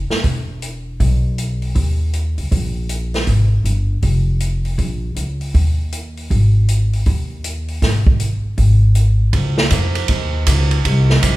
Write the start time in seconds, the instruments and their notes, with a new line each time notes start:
0.10 muted upright bass stroke, snare
0.23 upright bass E1, kick, open hi-hat
0.62 closed hi-hat
1.00 upright bass B1, kick, open hi-hat
1.38 closed hi-hat
1.62 open hi-hat
1.75 upright bass D#2, kick, open hi-hat
2.13 closed hi-hat
2.38 upright bass C#2, open hi-hat
2.51 upright bass A#1, kick, open hi-hat
2.89 closed hi-hat
3.14 snare, open hi-hat
3.27 upright bass G#1, kick, open hi-hat
3.64 upright bass G1, closed hi-hat
4.02 upright bass F1, kick, open hi-hat
4.40 closed hi-hat
4.65 open hi-hat
4.78 upright bass A#1, kick, open hi-hat
5.16 upright bass C#2, closed hi-hat
5.41 open hi-hat
5.54 upright bass D#2, kick, open hi-hat
5.92 closed hi-hat
6.17 open hi-hat
6.30 upright bass G#1, kick, open hi-hat
6.68 closed hi-hat
6.93 open hi-hat
7.06 upright bass D#2, kick, open hi-hat
7.44 closed hi-hat
7.68 open hi-hat
7.82 upright bass G#1, kick, snare, open hi-hat
8.07 kick
8.20 closed hi-hat
8.58 upright bass G#1, kick, open hi-hat
8.95 closed hi-hat
9.33 upright bass C#2, kick, ride
9.58 snare
9.70 upright bass F2, kick, hi-hat pedal, ride
9.95 ride
10.08 upright bass D#2, kick, ride
10.47 upright bass C#2, kick, hi-hat pedal, ride
10.71 ride
10.85 upright bass C2, kick, ride
11.10 snare
11.22 upright bass A#1, kick, hi-hat pedal, ride